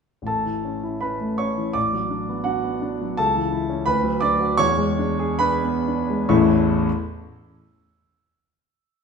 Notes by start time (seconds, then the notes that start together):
0.22 A1
0.27 A4 A5
0.46 E3
0.65 C#4
0.84 E4
1.01 C#4 B4 B5
1.20 A3
1.38 C#4 C#5 C#6
1.58 E3
1.73 A1 D5 D6
1.93 F#3
2.10 D4
2.29 B3
2.44 D4 F#4 F#5
2.64 B3
2.81 D4
3.01 F#3
3.17 C#2 A4 A5
3.35 E3
3.52 E4
3.69 C#4
3.86 D2 B4 B5
4.04 F#3
4.20 D4 D5 D6
4.40 F#4
4.57 E2 C#5 C#6
4.77 G#3
4.98 D4
5.19 G#4
5.39 D4 B4 B5
5.64 B3
5.88 D4
6.09 G#3
6.29 A1 E2 E3 A3 C#4 E4 C#6